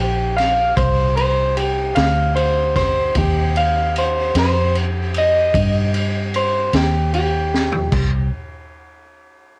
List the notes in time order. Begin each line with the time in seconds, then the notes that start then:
Already playing: A#1 C4 D#4 G4
0.00 G4
0.36 F5, snare, ride
0.77 C2 C5, kick, ride
1.17 C5, ride
1.57 G4, ride
1.95 D2 F5, snare, ride
2.36 C5, ride
2.76 C5, kick, snare, ride
3.15 D#2 G4, kick, ride
3.56 F5, ride
3.96 C5, ride
4.35 F2, snare, ride
4.39 C5
4.75 ride
5.14 D#5, ride
5.54 G2, kick, ride
5.94 ride
6.34 C5, ride
6.73 D#2 G4, snare, ride
7.13 G4, ride
7.54 snare
7.72 floor tom
7.91 C2 C4 D#4 G4, kick, crash